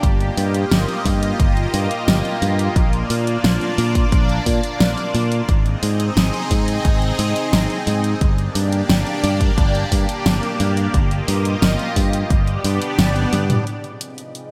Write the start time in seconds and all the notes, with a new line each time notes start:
Already playing: G4
0.03 G1 A#3 F4 D#5, kick, closed hi-hat
0.21 closed hi-hat
0.37 G2, open hi-hat
0.54 closed hi-hat
0.71 G1, snare, closed hi-hat
0.88 closed hi-hat
1.05 G2, kick, open hi-hat
1.23 closed hi-hat
1.40 G1, kick, closed hi-hat
1.57 closed hi-hat
1.74 G2, open hi-hat
1.91 closed hi-hat
2.08 G1, snare, closed hi-hat
2.25 closed hi-hat
2.42 G2, open hi-hat
2.59 closed hi-hat
2.76 A#1 D4 D5, kick, closed hi-hat
2.93 closed hi-hat
3.10 A#2, open hi-hat
3.27 closed hi-hat
3.44 A#1, snare, closed hi-hat
3.61 closed hi-hat
3.78 A#2, open hi-hat
3.95 kick, closed hi-hat
4.12 A#1, kick, closed hi-hat
4.29 closed hi-hat
4.46 A#2, kick, open hi-hat
4.63 closed hi-hat
4.80 A#1, snare, closed hi-hat
4.98 closed hi-hat
5.15 A#2, open hi-hat
5.32 closed hi-hat
5.49 G#1 C4 D#4 G#4 D#5, kick, closed hi-hat
5.66 closed hi-hat
5.83 G#2, open hi-hat
6.00 closed hi-hat
6.17 G#1, snare, closed hi-hat
6.34 closed hi-hat
6.51 G#2, kick, open hi-hat
6.68 closed hi-hat
6.85 G#1, kick, closed hi-hat
7.02 closed hi-hat
7.19 G#2, open hi-hat
7.36 closed hi-hat
7.53 G#1, snare, closed hi-hat
7.70 closed hi-hat
7.87 G#2, open hi-hat
8.04 closed hi-hat
8.21 G1 A#3 D4 G4 D5, kick, closed hi-hat
8.38 closed hi-hat
8.55 G2, open hi-hat
8.72 closed hi-hat
8.89 G1, snare, closed hi-hat
9.07 closed hi-hat
9.24 G2, open hi-hat
9.41 kick, closed hi-hat
9.58 G1, kick, closed hi-hat
9.75 closed hi-hat
9.92 G2, kick, open hi-hat
10.09 closed hi-hat
10.26 G1, snare, closed hi-hat
10.43 closed hi-hat
10.60 G2, open hi-hat
10.77 closed hi-hat
10.94 G1 F4 D#5, kick, closed hi-hat
11.11 closed hi-hat
11.28 G2, open hi-hat
11.45 closed hi-hat
11.62 G1, snare, closed hi-hat
11.79 closed hi-hat
11.96 G2, kick, open hi-hat
12.13 closed hi-hat
12.30 G1 B3 D4 G4 D5, kick, closed hi-hat
12.47 closed hi-hat
12.64 G2, open hi-hat
12.82 closed hi-hat
12.99 G1, snare, closed hi-hat
13.16 closed hi-hat
13.33 G2, open hi-hat, high tom
13.50 closed hi-hat, mid tom
13.67 C4 F4 G#4 D#5, closed hi-hat
13.84 closed hi-hat
14.01 closed hi-hat
14.18 closed hi-hat
14.35 closed hi-hat